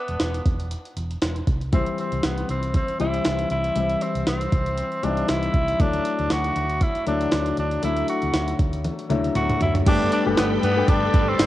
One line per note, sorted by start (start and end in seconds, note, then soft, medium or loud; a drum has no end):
0.00 0.46 B3 medium
0.08 0.17 E1 medium
0.08 closed hi-hat soft
0.20 0.39 E1 medium
0.20 snare medium
0.20 closed hi-hat medium
0.34 closed hi-hat medium
0.46 0.74 E1 medium
0.46 kick medium
0.46 closed hi-hat medium
0.60 closed hi-hat soft
0.71 closed hi-hat medium
0.85 closed hi-hat soft
0.96 1.15 E1 medium
0.96 closed hi-hat medium
1.11 closed hi-hat soft
1.22 1.40 E1 medium
1.22 snare medium
1.22 closed hi-hat medium
1.36 closed hi-hat soft
1.47 1.84 C2 medium
1.47 kick medium
1.47 closed hi-hat medium
1.61 closed hi-hat soft
1.72 2.69 E3 medium
1.72 2.69 G3 medium
1.72 2.70 C4 medium
1.72 1.97 C4 medium
1.72 2.70 E4 medium
1.72 kick loud
1.72 closed hi-hat medium
1.86 closed hi-hat soft
1.98 2.26 C4 medium
1.98 closed hi-hat medium
2.12 2.20 C2 medium
2.12 closed hi-hat soft
2.23 2.42 C2 medium
2.23 2.50 B3 medium
2.23 snare medium
2.23 closed hi-hat medium
2.37 closed hi-hat soft
2.49 2.77 C2 medium
2.49 2.73 C4 medium
2.49 closed hi-hat medium
2.63 closed hi-hat soft
2.74 2.99 C4 medium
2.74 kick medium
2.74 closed hi-hat medium
2.88 closed hi-hat soft
2.99 3.18 C2 medium
2.99 3.72 E3 medium
2.99 3.72 G3 medium
2.99 3.73 C4 medium
2.99 3.47 E4 medium
2.99 3.73 E4 medium
2.99 closed hi-hat medium
3.14 closed hi-hat soft
3.25 3.44 C2 medium
3.25 snare loud
3.25 closed hi-hat medium
3.39 closed hi-hat soft
3.50 3.69 C2 medium
3.50 4.04 E4 medium
3.50 closed hi-hat medium
3.64 closed hi-hat soft
3.76 3.94 C2 medium
3.76 4.73 E3 medium
3.76 4.73 G3 medium
3.76 4.73 C4 medium
3.76 4.73 E4 medium
3.76 closed hi-hat medium
3.90 closed hi-hat medium
4.01 4.28 C4 medium
4.01 closed hi-hat medium
4.15 4.24 C2 medium
4.15 closed hi-hat soft
4.27 4.45 C2 medium
4.27 5.05 C4 medium
4.27 snare medium
4.27 closed hi-hat medium
4.41 closed hi-hat medium
4.52 4.81 C2 medium
4.52 kick medium
4.52 closed hi-hat medium
4.66 closed hi-hat soft
4.78 closed hi-hat medium
4.92 closed hi-hat soft
5.03 5.22 C2 medium
5.03 5.76 E3 medium
5.03 5.76 G3 medium
5.03 5.76 C4 medium
5.03 5.31 D4 medium
5.03 5.10 D#4 medium
5.03 closed hi-hat medium
5.10 5.79 E4 medium
5.17 closed hi-hat soft
5.29 5.47 C2 medium
5.29 5.82 E4 medium
5.29 snare medium
5.29 closed hi-hat medium
5.43 closed hi-hat soft
5.54 5.72 C2 medium
5.54 kick medium
5.54 closed hi-hat medium
5.68 closed hi-hat soft
5.79 5.98 D2 medium
5.79 6.76 F#3 medium
5.79 6.76 A3 medium
5.79 6.77 D4 medium
5.79 6.33 D4 loud
5.79 6.77 E4 medium
5.79 kick loud
5.79 closed hi-hat medium
5.93 closed hi-hat medium
6.05 closed hi-hat medium
6.19 6.27 D2 medium
6.19 closed hi-hat soft
6.30 6.49 D2 medium
6.30 6.84 F#4 loud
6.30 snare medium
6.30 closed hi-hat medium
6.44 closed hi-hat medium
6.56 6.84 D2 medium
6.56 closed hi-hat medium
6.70 closed hi-hat soft
6.81 7.07 E4 loud
6.81 kick medium
6.81 closed hi-hat medium
6.95 closed hi-hat soft
7.06 7.25 D2 medium
7.06 7.79 F#3 medium
7.06 7.79 A3 medium
7.06 7.79 D4 medium
7.06 7.55 D4 medium
7.06 7.80 E4 medium
7.06 closed hi-hat medium
7.21 closed hi-hat soft
7.32 7.51 D2 medium
7.32 snare loud
7.32 closed hi-hat medium
7.46 closed hi-hat soft
7.57 7.76 D2 medium
7.57 7.82 D4 medium
7.57 closed hi-hat medium
7.71 closed hi-hat soft
7.82 8.01 D2 medium
7.82 8.79 F#3 medium
7.82 8.80 A3 medium
7.82 8.80 D4 medium
7.82 8.80 E4 medium
7.82 8.07 E4 loud
7.82 closed hi-hat medium
7.97 closed hi-hat medium
8.08 8.56 F#4 medium
8.08 closed hi-hat medium
8.22 8.31 D2 medium
8.22 closed hi-hat medium
8.34 8.52 D2 medium
8.34 snare medium
8.34 closed hi-hat medium
8.48 closed hi-hat medium
8.59 8.88 D2 medium
8.59 kick medium
8.59 closed hi-hat medium
8.73 closed hi-hat soft
8.85 closed hi-hat medium
8.85 high tom medium
8.99 closed hi-hat soft
9.10 9.29 D2 medium
9.10 9.82 F#3 medium
9.10 9.83 A3 medium
9.10 9.83 D4 medium
9.10 9.83 E4 medium
9.10 closed hi-hat medium
9.10 mid tom medium
9.25 closed hi-hat soft
9.35 9.54 D2 loud
9.35 9.60 F#4 loud
9.35 closed hi-hat medium
9.35 mid tom medium
9.50 closed hi-hat soft
9.50 mid tom medium
9.61 9.80 D2 medium
9.61 9.73 E4 medium
9.61 closed hi-hat medium
9.61 floor tom medium
9.75 closed hi-hat soft
9.75 floor tom medium
9.86 10.05 G1 loud
9.86 10.23 G3 medium
9.86 10.24 A3 medium
9.86 11.46 A3 medium
9.86 10.24 B3 medium
9.86 10.24 D4 medium
9.86 10.11 D4 loud
9.86 10.24 G4 medium
9.86 11.46 A4 medium
9.86 11.46 D5 medium
9.86 11.46 G5 medium
9.86 11.46 B5 loud
9.86 kick loud
9.86 closed hi-hat loud
9.86 crash loud
10.12 10.62 D4 medium
10.12 10.24 D4 loud
10.12 closed hi-hat medium
10.25 10.34 G1 medium
10.25 10.73 G3 medium
10.25 10.74 A3 medium
10.25 10.74 B3 medium
10.25 10.74 D4 medium
10.25 10.74 G4 medium
10.37 10.56 G1 loud
10.37 10.49 B3 medium
10.37 11.12 G4 medium
10.37 snare loud
10.37 closed hi-hat medium
10.37 tambourine medium
10.63 10.81 G2 loud
10.63 10.90 B3 loud
10.63 11.46 D4 medium
10.63 closed hi-hat medium
10.77 11.46 G3 medium
10.77 11.46 A3 medium
10.77 11.46 D4 medium
10.77 11.46 G4 medium
10.77 11.46 B4 medium
10.88 11.06 G1 loud
10.88 11.30 D4 loud
10.88 11.39 B4 medium
10.88 kick loud
10.88 closed hi-hat medium
11.14 11.32 G1 loud
11.14 11.46 G4 medium
11.14 kick loud
11.14 closed hi-hat medium
11.28 11.46 C4 loud
11.39 11.46 G1 loud
11.39 11.46 B4 medium
11.39 snare loud
11.39 closed hi-hat medium
11.39 tambourine medium